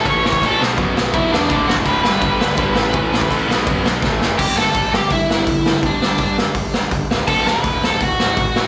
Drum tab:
CC |x---x---x---x---|x---x---x---x---|x---x---x-------|x---------------|
HH |----------------|----------------|----------------|----o---o---o---|
SD |--o---o---o---o-|--o---o---o---o-|--o---o---o-o-o-|--o---o---o---o-|
BD |o--oo---o---o---|o--oo---o---o---|o--oo---o---o---|o---o---o---o---|

CC |----------------|x---------------|
HH |o---o---o---o---|----o---o---o---|
SD |--o---o---o---o-|--o---o---o---o-|
BD |o---o---o---o---|o---o---o---o---|